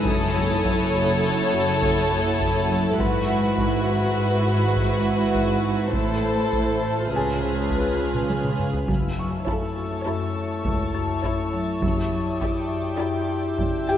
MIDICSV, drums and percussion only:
0, 0, Header, 1, 2, 480
1, 0, Start_track
1, 0, Tempo, 588235
1, 47, Time_signature, 5, 2, 24, 8
1, 11404, End_track
2, 0, Start_track
2, 0, Title_t, "Taiko and cinematic ensemble drums"
2, 42, Note_on_c, 9, 41, 82
2, 124, Note_off_c, 9, 41, 0
2, 525, Note_on_c, 9, 41, 67
2, 607, Note_off_c, 9, 41, 0
2, 1488, Note_on_c, 9, 41, 71
2, 1570, Note_off_c, 9, 41, 0
2, 1964, Note_on_c, 9, 41, 68
2, 2045, Note_off_c, 9, 41, 0
2, 2446, Note_on_c, 9, 41, 79
2, 2527, Note_off_c, 9, 41, 0
2, 2922, Note_on_c, 9, 41, 70
2, 3004, Note_off_c, 9, 41, 0
2, 3888, Note_on_c, 9, 41, 62
2, 3970, Note_off_c, 9, 41, 0
2, 4365, Note_on_c, 9, 41, 62
2, 4447, Note_off_c, 9, 41, 0
2, 4841, Note_on_c, 9, 41, 80
2, 4923, Note_off_c, 9, 41, 0
2, 5327, Note_on_c, 9, 41, 63
2, 5409, Note_off_c, 9, 41, 0
2, 6282, Note_on_c, 9, 41, 63
2, 6364, Note_off_c, 9, 41, 0
2, 6647, Note_on_c, 9, 47, 62
2, 6728, Note_off_c, 9, 47, 0
2, 6770, Note_on_c, 9, 48, 65
2, 6852, Note_off_c, 9, 48, 0
2, 6892, Note_on_c, 9, 47, 68
2, 6974, Note_off_c, 9, 47, 0
2, 7011, Note_on_c, 9, 45, 65
2, 7093, Note_off_c, 9, 45, 0
2, 7128, Note_on_c, 9, 43, 70
2, 7210, Note_off_c, 9, 43, 0
2, 7248, Note_on_c, 9, 41, 84
2, 7330, Note_off_c, 9, 41, 0
2, 7727, Note_on_c, 9, 41, 70
2, 7809, Note_off_c, 9, 41, 0
2, 8688, Note_on_c, 9, 41, 73
2, 8770, Note_off_c, 9, 41, 0
2, 9167, Note_on_c, 9, 41, 67
2, 9249, Note_off_c, 9, 41, 0
2, 9648, Note_on_c, 9, 41, 84
2, 9729, Note_off_c, 9, 41, 0
2, 10132, Note_on_c, 9, 41, 65
2, 10213, Note_off_c, 9, 41, 0
2, 11086, Note_on_c, 9, 41, 66
2, 11168, Note_off_c, 9, 41, 0
2, 11404, End_track
0, 0, End_of_file